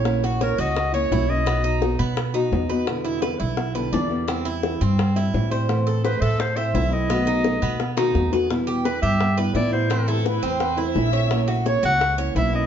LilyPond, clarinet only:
\new Staff \with { instrumentName = "Clarinet" } { \time 4/4 \key e \minor \tempo 4 = 171 r4 ais'8 dis''4 cis''4 dis''8~ | dis''4 r2. | r1 | r1 |
r4 b'8 e''8 c''8 e''4 dis''8~ | dis''2. r4 | r4 b'8 e''4 r8 d''8 c''8~ | c''4 r2. |
r4 cis''8 fis''4 r8 e''8 dis''8 | }